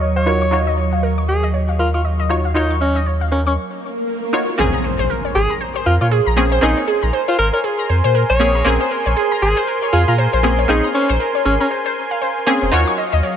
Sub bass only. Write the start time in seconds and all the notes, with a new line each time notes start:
Already playing: D#2
4.59 A#1
4.99 A#1
5.35 G#1
5.86 F2
6.01 A#2
6.26 A#1
6.62 A#1
7.03 A#1
7.38 G#1
7.89 F2
8.04 A#2
8.30 A#1
8.66 A#1
9.06 A#1
9.42 G#1
9.93 F2
10.08 A#2
10.33 A#1
10.69 A#1
11.09 A#1
11.45 G#1
12.62 F1
12.72 D#2
13.13 D#2